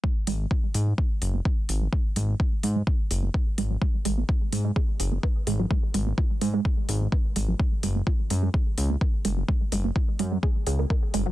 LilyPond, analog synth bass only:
\new Staff \with { instrumentName = "Analog synth bass" } { \clef bass \time 4/4 \key fis \major \tempo 4 = 127 r8 gis,,8 r8 gis,8 r8 fis,,8 r8 gis,,8 | r8 gis,,8 r8 gis,8 r8 fis,,8 r8 gis,,8 | r8 gis,,8 r8 gis,8 r8 fis,,8 r8 gis,,8 | r8 gis,,8 r8 gis,8 r8 gis,,8 r8 gis,,8 |
r8 fis,,8 r8 fis,8 r8 cis,8 r8 fis,,8 | r8 fis,,8 r8 fis,8 r8 cis,8 r8 fis,,8 | }